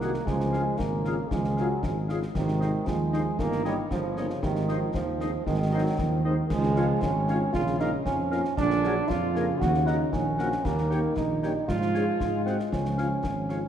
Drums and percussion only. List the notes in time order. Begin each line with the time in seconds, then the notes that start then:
0.01 snare
0.14 snare
0.27 concert bass drum, snare
0.40 snare
0.53 snare
0.79 concert bass drum, snare
1.05 snare
1.31 concert bass drum, snare
1.44 snare
1.57 snare
1.83 concert bass drum, snare
2.09 snare
2.22 snare
2.35 concert bass drum, snare, crash
2.48 snare
2.61 snare
2.87 concert bass drum, snare
3.13 snare
3.39 concert bass drum, snare
3.52 snare
3.65 snare
3.91 concert bass drum, snare
4.17 snare
4.30 snare
4.43 concert bass drum, snare
4.56 snare
4.68 snare
4.94 concert bass drum, snare
5.20 snare
5.46 concert bass drum, snare
5.99 concert bass drum, snare
6.50 concert bass drum, snare, crash
6.63 snare
6.76 snare
7.02 concert bass drum, snare
7.28 snare
7.54 concert bass drum, snare
7.67 snare
7.80 snare
8.06 concert bass drum, snare
8.32 snare
8.45 snare
8.57 concert bass drum, snare
8.70 snare
8.84 snare
9.10 concert bass drum, snare
9.36 snare
9.62 concert bass drum, snare
9.74 snare
9.87 snare
10.13 concert bass drum, snare
10.39 snare
10.52 snare
10.65 concert bass drum, snare, crash
10.78 snare
10.91 snare
11.17 concert bass drum, snare
11.43 snare
11.69 concert bass drum, snare
11.82 snare
11.95 snare
12.20 concert bass drum, snare
12.47 snare
12.59 snare
12.72 concert bass drum, snare
12.85 snare
12.98 snare
13.24 concert bass drum, snare
13.49 snare